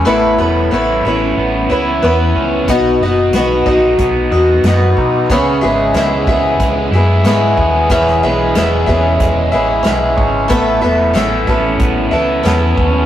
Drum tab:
HH |----------------|x---x---x---x---|x---x---x---x---|x---x---x---x---|
SD |----------------|----o-------o---|----o-------o---|-o--o-------o---|
BD |----------------|o-----o-o-----o-|o-----o-o-----o-|o-----o-o-----o-|

HH |x---x---x---x---|
SD |----o-------o---|
BD |o-----o-o-----o-|